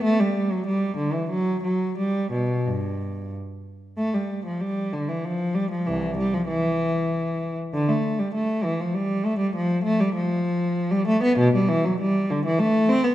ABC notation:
X:1
M:3/4
L:1/16
Q:1/4=96
K:G
V:1 name="Cello" clef=bass
A, G,2 F, G,2 D, E, F,2 F,2 | G,2 B,,2 G,,4 z4 | [K:Flyd] A, G,2 F, G,2 D, E, F,2 G, F, | [C,,E,]2 G, F, E,6- E, z |
D, A,2 G, A,2 E, F, G,2 A, G, | F,2 A, G, F,4- F, G, A, B, | [K:G] B,, G, E, F, G,2 D, E, A,2 C B, |]